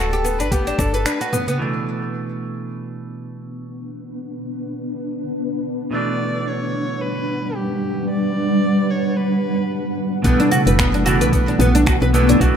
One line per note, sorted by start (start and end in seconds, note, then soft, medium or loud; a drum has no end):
0.00 0.41 D1 medium
0.00 0.11 F#4 medium
0.00 0.40 A4 loud
0.13 0.24 G4 medium
0.13 darbuka tek medium
0.13 shaker soft
0.25 0.39 B3 medium
0.25 shaker medium
0.39 0.73 G1 loud
0.39 0.47 D4 medium
0.39 0.53 B4 loud
0.39 open hi-hat soft
0.39 darbuka ka soft
0.39 shaker soft
0.52 0.66 B3 medium
0.52 0.81 G4 loud
0.52 kick loud
0.52 open hi-hat medium
0.52 darbuka ka medium
0.52 shaker soft
0.67 0.77 D4 medium
0.67 open hi-hat soft
0.67 darbuka tek soft
0.67 shaker soft
0.79 1.06 G1 medium
0.79 0.93 D4 medium
0.79 1.07 A4 loud
0.79 finger snap soft
0.79 kick medium
0.79 shaker medium
0.94 1.05 B4 medium
0.94 open hi-hat soft
0.94 shaker soft
1.06 1.19 D4 medium
1.06 1.48 B4 loud
1.06 finger snap loud
1.06 open hi-hat medium
1.06 shaker soft
1.21 1.32 F#4 medium
1.21 open hi-hat soft
1.21 shaker soft
1.33 1.47 B3 medium
1.33 mid tom medium
1.33 darbuka ka soft
1.33 shaker medium
1.47 1.59 B3 medium
1.47 open hi-hat soft
1.47 darbuka dum medium
1.47 shaker soft
1.58 5.88 B2 medium
1.58 5.89 E3 medium
1.58 5.90 A3 medium
1.58 7.40 B3 medium
1.58 5.90 D4 medium
1.63 12.57 D4 medium
2.21 6.71 B4 medium
2.37 12.57 F#5 medium
5.91 10.21 B2 medium
5.91 10.22 E3 medium
5.91 10.25 G3 medium
5.91 10.22 A3 medium
5.91 6.49 D5 loud
5.95 10.23 D4 medium
6.47 7.03 C#5 loud
6.72 11.99 B4 medium
7.01 7.57 B4 loud
7.56 8.09 G4 medium
8.10 8.92 D5 loud
8.90 9.18 C#5 medium
9.17 9.98 B4 medium
10.22 10.36 B1 medium
10.22 11.02 B2 medium
10.22 11.03 E3 medium
10.22 11.03 A3 medium
10.22 10.38 B3 loud
10.22 12.57 B3 medium
10.22 kick medium
10.22 open hi-hat soft
10.22 shaker soft
10.27 11.04 D4 loud
10.40 10.50 D4 loud
10.40 shaker soft
10.51 10.60 F#4 loud
10.51 darbuka tek medium
10.51 darbuka dum loud
10.51 shaker medium
10.67 11.22 F#1 loud
10.67 10.74 B4 medium
10.67 open hi-hat medium
10.67 shaker soft
10.79 10.93 B3 medium
10.79 finger snap loud
10.79 kick loud
10.79 open hi-hat soft
10.79 shaker soft
10.94 11.05 D4 medium
10.94 shaker soft
11.04 12.10 B2 medium
11.04 12.11 E3 medium
11.04 12.12 A3 medium
11.04 11.20 F#4 loud
11.04 darbuka dum medium
11.04 shaker medium
11.08 12.12 D4 loud
11.21 11.54 B1 loud
11.21 11.28 B4 medium
11.21 open hi-hat medium
11.21 shaker soft
11.33 11.47 B3 medium
11.33 kick loud
11.33 open hi-hat soft
11.33 shaker soft
11.47 11.59 D4 medium
11.47 darbuka ka soft
11.47 shaker soft
11.59 11.95 B1 loud
11.59 11.73 B3 medium
11.59 mid tom medium
11.59 darbuka tek medium
11.59 shaker medium
11.75 11.86 D4 loud
11.75 open hi-hat medium
11.75 shaker soft
11.86 11.95 F#4 loud
11.86 finger snap loud
11.86 kick loud
11.86 open hi-hat soft
11.86 shaker soft
12.02 12.35 B1 loud
12.02 12.09 B4 medium
12.02 darbuka tek medium
12.02 shaker soft
12.13 12.38 B2 medium
12.13 12.38 E3 medium
12.13 12.38 A3 medium
12.13 12.28 B3 medium
12.13 12.39 D4 loud
12.13 shaker medium
12.29 12.40 D4 loud
12.29 mid tom medium
12.29 open hi-hat medium
12.29 shaker soft
12.39 12.52 B1 loud
12.39 12.57 B2 medium
12.39 12.57 E3 medium
12.39 12.57 A3 medium
12.39 12.57 D4 loud
12.39 12.55 F#4 loud
12.39 kick medium
12.39 open hi-hat soft
12.39 shaker soft